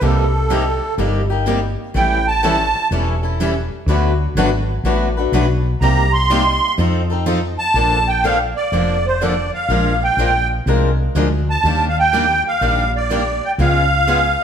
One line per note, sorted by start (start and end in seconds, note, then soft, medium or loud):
0.01 0.79 C2 medium
0.01 0.23 C3 medium
0.01 0.24 G3 medium
0.01 0.24 A#3 medium
0.01 0.24 D#4 medium
0.01 0.24 G4 medium
0.01 0.94 A4 medium
0.50 0.62 C3 medium
0.50 0.62 G3 medium
0.50 0.62 A#3 medium
0.50 0.62 D#4 medium
0.50 0.62 G4 medium
0.98 1.75 G1 medium
0.98 1.20 C3 medium
0.98 1.20 G3 medium
0.98 1.21 A#3 medium
0.98 1.21 D#4 medium
0.98 1.21 G4 medium
1.30 1.46 A#3 soft
1.30 1.46 D#4 medium
1.30 1.46 G4 medium
1.46 1.58 C3 medium
1.46 1.58 G3 medium
1.46 1.58 A#3 medium
1.46 1.59 D#4 medium
1.46 1.59 G4 medium
1.94 2.72 A1 medium
1.94 2.17 E3 medium
1.94 2.17 G3 medium
1.94 2.17 C#4 medium
1.94 2.17 E4 medium
1.94 2.17 A4 medium
1.94 2.26 G5 medium
2.27 2.88 A5 loud
2.43 2.55 E3 medium
2.43 2.55 G3 medium
2.43 2.55 C#4 loud
2.43 2.55 E4 medium
2.43 2.56 A4 loud
2.91 3.68 E1 medium
2.91 3.14 E3 medium
2.91 3.14 G3 medium
2.91 3.14 C#4 medium
2.91 3.14 E4 medium
2.91 3.14 A4 medium
3.23 3.40 C#4 soft
3.23 3.40 E4 medium
3.23 3.39 A4 medium
3.41 3.52 E3 medium
3.41 3.52 G3 medium
3.41 3.52 C#4 medium
3.41 3.52 E4 medium
3.41 3.53 A4 medium
3.86 4.26 D2 medium
3.86 4.11 D3 medium
3.86 4.11 F#3 medium
3.86 4.11 A3 medium
3.86 4.10 B3 medium
3.86 4.11 D4 medium
3.86 4.11 F#4 medium
3.86 4.11 B4 medium
4.35 4.77 G#1 medium
4.35 4.48 D3 medium
4.35 4.48 F#3 loud
4.35 4.49 A3 medium
4.35 4.48 B3 medium
4.35 4.49 D4 loud
4.35 4.49 F#4 loud
4.35 4.49 B4 loud
4.83 5.25 A1 medium
4.83 5.07 D3 medium
4.83 5.07 F#3 medium
4.83 5.07 A3 medium
4.83 5.08 B3 medium
4.83 5.07 D4 medium
4.83 5.08 F#4 medium
4.83 5.08 B4 medium
5.17 5.32 A3 medium
5.17 5.33 D4 medium
5.17 5.33 F#4 medium
5.17 5.33 B4 medium
5.32 5.74 B1 medium
5.32 5.45 D3 medium
5.32 5.45 F#3 medium
5.32 5.45 A3 medium
5.32 5.46 B3 medium
5.32 5.45 D4 medium
5.32 5.45 F#4 medium
5.32 5.45 B4 loud
5.81 6.58 C2 medium
5.81 6.04 C3 medium
5.81 6.04 G3 medium
5.81 6.04 A#3 medium
5.81 6.04 D#4 medium
5.81 6.04 G4 medium
5.81 6.12 A#5 medium
6.13 6.74 C6 loud
6.30 6.42 C3 loud
6.30 6.42 G3 loud
6.30 6.42 A#3 medium
6.30 6.42 D#4 loud
6.30 6.42 G4 loud
6.78 7.55 F2 medium
6.78 7.00 F3 medium
6.78 7.01 C4 medium
6.78 7.01 D#4 medium
6.78 7.01 A4 medium
7.10 7.26 C4 soft
7.10 7.26 D#4 medium
7.10 7.26 A4 medium
7.26 7.38 F3 medium
7.26 7.38 C4 medium
7.26 7.38 D#4 loud
7.26 7.39 A4 medium
7.59 8.08 A5 loud
7.74 8.52 A#1 medium
7.74 7.97 D3 medium
7.74 7.98 F3 medium
7.74 7.98 A#3 medium
7.74 7.98 D4 medium
7.74 7.98 A4 medium
8.08 8.24 G5 medium
8.24 8.36 D3 medium
8.24 8.36 F3 medium
8.24 8.36 A#3 medium
8.24 8.36 D4 medium
8.24 8.36 A4 medium
8.24 8.38 F5 medium
8.56 9.06 D5 medium
8.72 9.50 F1 medium
8.72 8.95 D3 medium
8.72 8.95 F3 medium
8.72 8.95 A#3 medium
8.72 8.95 D4 medium
8.72 8.95 A4 medium
9.06 9.22 C5 medium
9.21 9.33 D3 medium
9.21 9.33 F3 medium
9.21 9.33 A#3 medium
9.21 9.33 D4 medium
9.21 9.33 A4 medium
9.21 9.51 D5 medium
9.54 10.03 F5 medium
9.69 10.08 A#1 medium
9.69 9.92 F3 medium
9.69 9.92 G#3 medium
9.69 9.92 D4 medium
9.69 9.92 F4 medium
9.69 9.92 A#4 medium
10.04 10.48 G5 medium
10.17 10.58 A#1 medium
10.17 10.30 F3 medium
10.17 10.30 G#3 medium
10.17 10.30 D4 medium
10.17 10.30 F4 medium
10.17 10.30 A#4 medium
10.66 11.07 C2 medium
10.66 10.89 F3 medium
10.66 10.89 G#3 medium
10.66 10.90 D4 medium
10.66 10.90 F4 medium
10.66 10.90 A#4 medium
11.15 11.56 D2 medium
11.15 11.27 F3 medium
11.15 11.27 G#3 medium
11.15 11.28 D4 medium
11.15 11.28 F4 medium
11.15 11.28 A#4 medium
11.50 11.85 A5 loud
11.64 12.41 D#2 medium
11.64 11.86 D#3 medium
11.64 11.87 G3 medium
11.64 11.87 A#3 medium
11.64 11.87 D4 medium
11.64 11.87 G4 medium
11.89 11.97 F5 medium
11.99 12.43 G5 loud
12.13 12.24 D#3 medium
12.13 12.24 G3 medium
12.13 12.25 A#3 medium
12.13 12.25 D4 medium
12.13 12.25 G4 medium
12.48 12.91 F5 loud
12.61 13.39 A#1 medium
12.61 12.83 D#3 medium
12.61 12.83 G3 medium
12.61 12.84 A#3 medium
12.61 12.84 D4 medium
12.61 12.84 G4 medium
12.96 13.44 D5 medium
13.10 13.22 D#3 medium
13.10 13.22 G3 medium
13.10 13.22 A#3 medium
13.10 13.22 D4 medium
13.10 13.22 G4 medium
13.45 13.51 G5 medium
13.58 14.36 C#2 medium
13.58 13.81 C#3 medium
13.58 13.81 G#3 medium
13.58 13.81 B3 medium
13.58 13.81 F4 medium
13.58 13.82 G#4 medium
13.58 14.42 F5 loud
14.07 14.19 C#3 medium
14.07 14.19 G#3 medium
14.07 14.19 B3 medium
14.07 14.19 F4 medium
14.07 14.19 G#4 medium